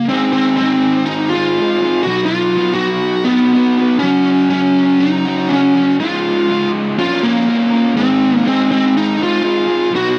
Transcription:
0.09 0.59 G#2 loud
0.09 0.59 D#3 loud
0.09 0.60 G#3 loud
0.09 0.32 C4 medium
0.09 0.60 C4 medium
0.09 0.62 D#4 medium
0.09 0.62 G#4 loud
0.33 0.56 C4 medium
0.57 1.58 G#2 loud
0.57 1.58 D#3 medium
0.57 1.03 C4 medium
0.61 1.35 G#3 loud
0.61 1.34 C4 medium
0.61 1.33 D#4 loud
0.61 1.31 G#4 loud
1.06 1.29 D#4 loud
1.30 2.03 F4 loud
1.30 1.60 G#4 medium
1.34 1.58 G#3 medium
1.34 1.59 C4 medium
1.34 1.60 D#4 medium
1.59 1.85 G#3 medium
1.59 1.84 C4 medium
1.59 1.82 D#4 loud
1.59 1.81 G#4 medium
1.83 2.07 G#3 medium
1.83 2.06 C4 medium
1.83 2.06 D#4 medium
1.83 2.05 G#4 medium
2.03 2.54 B2 medium
2.03 2.56 F#3 loud
2.03 2.25 F#4 loud
2.08 2.56 B3 loud
2.08 2.56 D#4 loud
2.08 2.58 F#4 loud
2.08 2.57 B4 loud
2.26 2.74 F4 loud
2.55 3.54 B2 loud
2.55 3.54 F#3 medium
2.55 3.30 B3 loud
2.55 3.29 D#4 loud
2.55 3.29 F#4 loud
2.55 3.27 B4 loud
2.74 3.23 F#4 loud
3.25 3.97 B3 loud
3.25 3.56 B4 medium
3.30 3.52 B3 medium
3.30 3.53 D#4 medium
3.30 3.55 F#4 medium
3.53 3.81 B3 medium
3.53 3.79 D#4 medium
3.53 3.79 F#4 medium
3.53 3.77 B4 loud
3.78 4.03 B3 medium
3.78 4.03 D#4 medium
3.78 4.03 F#4 medium
3.78 4.02 B4 medium
3.99 4.49 F#2 loud
3.99 4.49 C#4 loud
4.03 4.51 C#3 medium
4.03 4.51 F#3 loud
4.03 4.53 C#4 loud
4.03 4.53 F#4 loud
4.50 5.50 F#2 medium
4.50 5.48 C#3 medium
4.50 5.27 F#3 loud
4.50 5.02 C#4 loud
4.50 5.25 C#4 loud
4.50 5.24 F#4 loud
5.00 5.52 D#4 loud
5.25 5.50 F#3 medium
5.25 5.51 C#4 medium
5.25 5.52 F#4 medium
5.49 5.98 C#3 medium
5.49 5.77 F#3 medium
5.49 5.95 C#4 medium
5.49 5.76 C#4 medium
5.49 5.74 F#4 medium
5.75 6.00 F#3 medium
5.75 5.99 C#4 medium
5.75 5.98 F#4 medium
6.00 6.48 C#2 medium
6.00 6.49 G#2 loud
6.00 6.49 C#3 loud
6.00 6.50 G#3 loud
6.00 6.70 F4 medium
6.00 6.51 F4 loud
6.50 6.97 C#2 loud
6.50 6.97 G#2 medium
6.50 6.98 C#3 medium
6.50 6.98 G#3 loud
6.50 6.99 F4 loud
6.98 7.47 A#2 medium
6.98 7.48 F3 medium
6.98 7.24 A#3 medium
6.98 7.23 C#4 loud
6.98 7.21 F4 loud
6.98 7.22 F4 loud
6.98 7.20 A#4 loud
7.21 7.96 A#3 loud
7.21 7.44 A#3 medium
7.21 7.46 C#4 medium
7.21 7.48 F4 medium
7.21 7.48 A#4 medium
7.46 7.73 A#3 medium
7.46 7.72 C#4 medium
7.46 7.71 F4 loud
7.46 7.70 A#4 medium
7.71 7.95 A#3 medium
7.71 7.95 C#4 medium
7.71 7.95 F4 medium
7.71 7.95 A#4 medium
7.94 8.43 G#2 medium
7.94 8.44 D#3 loud
7.94 8.44 G#3 loud
7.94 8.46 C4 medium
7.94 8.45 C4 loud
7.94 8.47 D#4 loud
7.94 8.46 G#4 loud
8.44 9.43 G#2 medium
8.44 9.44 D#3 loud
8.44 9.18 G#3 loud
8.44 9.17 C4 loud
8.44 8.70 C4 medium
8.44 9.17 D#4 loud
8.44 9.15 G#4 loud
8.71 8.94 C4 medium
8.97 9.21 D#4 loud
9.17 9.41 G#3 medium
9.17 9.43 C4 medium
9.17 9.43 D#4 medium
9.17 9.44 G#4 medium
9.23 9.91 F4 loud
9.42 9.68 G#3 medium
9.42 9.67 C4 medium
9.42 9.66 D#4 medium
9.42 9.66 G#4 medium
9.67 9.91 G#3 medium
9.67 9.92 C4 medium
9.67 9.91 D#4 medium
9.67 9.91 G#4 medium
9.90 10.19 B2 loud
9.90 10.19 F#3 loud
9.90 10.19 B3 loud
9.90 10.19 D#4 loud
9.90 10.19 F#4 loud
9.90 10.19 B4 loud
9.96 10.19 F#4 loud

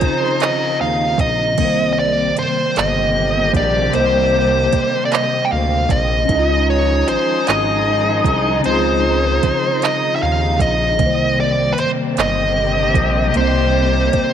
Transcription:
0.00 0.10 D#2 soft
0.00 1.52 C#3 medium
0.00 1.56 C#3 medium
0.00 1.54 D#3 medium
0.00 1.15 F3 medium
0.00 1.54 F3 medium
0.00 1.54 C4 medium
0.00 1.15 D#4 medium
0.00 1.54 D#4 loud
0.00 1.56 F4 medium
0.00 1.15 G#4 medium
0.00 0.77 C5 medium
0.00 1.57 C5 medium
0.00 kick medium
0.00 closed hi-hat medium
0.40 0.78 D#5 loud
0.40 clap loud
0.40 closed hi-hat medium
0.81 1.15 D#2 medium
0.81 1.20 F5 loud
1.18 1.54 A#1 medium
1.18 1.92 D#5 loud
1.18 kick loud
1.18 closed hi-hat medium
1.54 3.87 C3 medium
1.54 3.89 A#3 medium
1.54 kick loud
1.54 closed hi-hat medium
1.54 crash medium
1.58 2.33 C2 loud
1.58 6.25 C3 medium
1.58 3.91 D#3 medium
1.58 6.25 G3 medium
1.58 6.25 A#3 medium
1.58 6.25 C4 medium
1.65 3.93 C5 medium
1.93 1.98 D#5 medium
1.99 2.35 D5 loud
2.37 2.46 G1 soft
2.37 2.78 C5 medium
2.37 closed hi-hat medium
2.75 3.51 G1 loud
2.75 5.85 C3 medium
2.75 5.85 D3 medium
2.75 5.85 G4 medium
2.75 3.51 D#5 loud
2.75 clap loud
2.75 closed hi-hat medium
3.54 3.90 A#1 loud
3.54 3.94 D5 medium
3.54 kick loud
3.54 closed hi-hat medium
3.90 6.23 C3 medium
3.90 6.25 A#3 medium
3.90 closed hi-hat medium
3.95 4.69 C2 loud
3.95 5.05 C5 loud
3.95 6.26 D#5 medium
4.00 6.28 C5 medium
4.73 4.81 D2 soft
4.73 kick medium
4.73 closed hi-hat medium
5.05 5.12 D5 medium
5.12 5.45 D#5 loud
5.12 clap loud
5.12 closed hi-hat medium
5.45 5.51 G5 medium
5.52 5.87 D2 loud
5.52 5.91 F5 loud
5.89 6.25 A#1 loud
5.89 6.70 D#5 loud
5.89 kick loud
5.89 closed hi-hat medium
6.25 10.95 D#3 medium
6.25 10.95 F3 medium
6.25 10.56 F3 medium
6.25 10.95 G#3 medium
6.25 8.58 C#4 medium
6.25 10.95 D#4 medium
6.25 10.56 D#4 medium
6.25 8.60 D#4 medium
6.25 10.56 G#4 loud
6.25 kick loud
6.25 closed hi-hat medium
6.30 7.04 C#2 loud
6.30 6.37 E4 soft
6.36 8.65 F4 medium
6.36 8.63 D#5 medium
6.70 7.08 C#5 loud
7.08 7.17 G#1 soft
7.08 7.48 C5 medium
7.08 closed hi-hat medium
7.47 8.22 G#1 loud
7.47 8.61 D#5 loud
7.47 clap loud
7.47 closed hi-hat medium
8.24 8.60 C2 loud
8.24 kick loud
8.24 closed hi-hat medium
8.60 10.93 C#3 medium
8.60 10.95 C4 medium
8.64 9.39 C#2 loud
8.64 10.97 F4 medium
8.64 9.86 C5 medium
8.64 closed hi-hat medium
8.71 10.99 G#4 medium
9.43 9.52 D#2 soft
9.43 kick loud
9.43 closed hi-hat medium
9.82 10.15 D#5 loud
9.82 clap loud
9.82 closed hi-hat medium
10.16 10.22 E5 medium
10.22 10.62 D#2 medium
10.22 10.61 F5 medium
10.59 11.02 A#1 loud
10.59 11.40 D#5 loud
10.59 kick loud
10.59 closed hi-hat medium
10.96 13.29 C3 medium
10.96 14.33 C3 medium
10.96 14.33 G3 medium
10.96 13.30 A#3 medium
10.96 14.33 A#3 medium
10.96 14.33 C4 medium
10.96 kick loud
10.96 closed hi-hat medium
11.00 11.74 C2 loud
11.00 13.32 D#3 medium
11.06 13.34 C5 medium
11.40 11.72 D5 medium
11.73 11.79 B4 medium
11.78 11.87 G1 soft
11.78 11.90 C5 medium
11.78 closed hi-hat medium
12.16 12.92 G1 loud
12.16 14.33 C3 medium
12.16 14.33 D3 medium
12.16 14.33 G4 medium
12.16 13.37 D#5 loud
12.16 clap loud
12.16 closed hi-hat medium
12.94 13.31 A#1 loud
12.94 kick loud
12.94 closed hi-hat medium
13.31 14.33 C3 medium
13.31 14.33 A#3 medium
13.31 closed hi-hat medium
13.36 14.10 C2 loud
13.36 14.33 C4 medium
13.36 14.33 C5 medium
13.41 14.33 D#5 medium
14.13 14.22 D2 medium
14.13 kick medium
14.13 closed hi-hat medium

